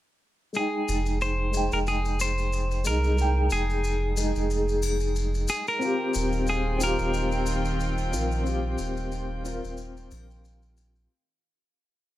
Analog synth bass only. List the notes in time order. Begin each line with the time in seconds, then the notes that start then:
0.89 F1
1.73 F1
2.86 C2
3.52 F1
4.37 F1
6.16 D#1
7.00 D#1
8.13 A#1
8.80 D#1
9.64 D#1
10.12 A#1